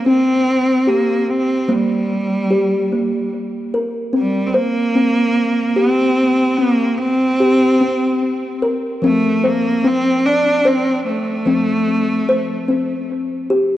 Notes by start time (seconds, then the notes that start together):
0.06 C4
0.87 A#3 G4
1.30 C4
1.68 G3 A#3
2.50 G4
2.92 A#3
3.74 A#4
4.13 C4
4.18 G3
4.46 C4
4.54 A#3 C5
4.95 C4
5.76 C4 G4
6.56 A#3 C4
6.97 C4
7.40 G4
7.81 C4
8.62 A#4
9.02 F3 A3 C4
9.44 A#3 C5
9.84 C4
10.25 D4
10.65 C4 C5
11.06 A3
11.46 F3 C4
12.29 C5
12.68 C4
13.50 G4